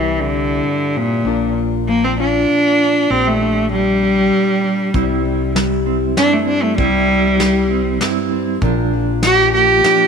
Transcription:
Already playing: C2 C3 E3 C4 E4 G4
0.02 G3
0.19 D3
0.34 E4
0.65 G2
0.96 A#2 C4
1.25 A#1 A#2 D4 F4 A#4
1.58 D4
1.88 F3 A#3
2.04 C4
2.20 D4 F4
2.50 A#2
2.81 D4
3.10 A#1 A#2 C4 D4 G4
3.27 A3
3.42 D4
3.72 G3
4.03 G4
4.33 A#2
4.64 D4
4.94 C2 C3 G3 C4 E4 G4, kick, closed hi-hat
5.25 C4
5.55 G3, snare, closed hi-hat
5.86 C4 E4
6.17 G2 G3 C4 D4 E4, snare, closed hi-hat
6.33 A3
6.47 C4 D4
6.63 A3
6.78 C2 C3 G3 C4 E4 G4, kick, closed hi-hat
7.08 C4
7.38 G3, snare, closed hi-hat
7.69 C4 E4
8.00 G2 G3 C4 E4, snare, closed hi-hat
8.32 C4
8.61 A#1 A#2 F3 D4 F4 A#4, kick, closed hi-hat
8.93 D4
9.23 F3 G4, snare, closed hi-hat
9.54 A#3 F4 G4
9.84 A#2 F3 A#3 D4, snare, closed hi-hat

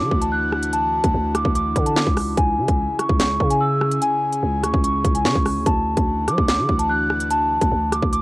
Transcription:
Already playing: E3 D4 E4 F#4 D6
0.01 D3
0.11 D2, kick
0.22 A5, closed hi-hat
0.32 F#6
0.53 cross-stick
0.63 closed hi-hat
0.73 A5, closed hi-hat
1.04 D2, kick, closed hi-hat
1.14 D2
1.35 D6, cross-stick, closed hi-hat
1.45 D2, kick
1.55 D6, closed hi-hat
1.76 D3, kick, closed hi-hat
1.86 A5, closed hi-hat
1.96 D6, snare, clap
2.07 C#2, kick
2.17 cross-stick, open hi-hat
2.37 C#2 C#3 C#4 G#4 G#5, kick, closed hi-hat
2.58 C#3
2.68 C#2, kick, closed hi-hat
2.99 C#6, cross-stick, closed hi-hat
3.09 C#2, kick
3.19 C#6, snare, clap, closed hi-hat
3.40 C#3, kick
3.50 G#5, closed hi-hat
3.61 E6
3.81 cross-stick
3.92 closed hi-hat
4.02 G#5, closed hi-hat
4.33 closed hi-hat
4.43 C#2
4.63 D2 C#6, cross-stick, closed hi-hat
4.74 C#2, kick
4.84 C#6, closed hi-hat
5.05 C#2, kick, closed hi-hat
5.15 G#5, closed hi-hat
5.25 C#3 C#6, snare, clap
5.35 C#2, kick
5.46 cross-stick, open hi-hat
5.56 D2
5.66 D2 E3 D4 F#4 A5, kick, closed hi-hat
5.97 D2, kick, closed hi-hat
6.28 F#3 D6, cross-stick, closed hi-hat
6.38 D2, kick
6.48 D6, snare, clap, closed hi-hat
6.59 D3
6.69 D2, kick
6.79 A5, closed hi-hat
6.89 F#6
7.10 cross-stick
7.20 closed hi-hat
7.31 A5, closed hi-hat
7.61 D2, kick, closed hi-hat
7.72 D2
7.92 D6, cross-stick, closed hi-hat
8.02 D2, kick
8.13 D6, closed hi-hat

